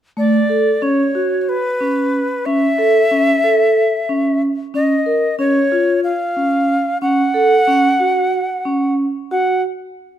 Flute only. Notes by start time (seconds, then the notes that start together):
0.18 D5
0.83 C#5
1.41 C#5
1.49 B4
2.46 E5
4.75 D#5
5.39 C#5
6.04 F5
7.02 F#5
9.31 F#5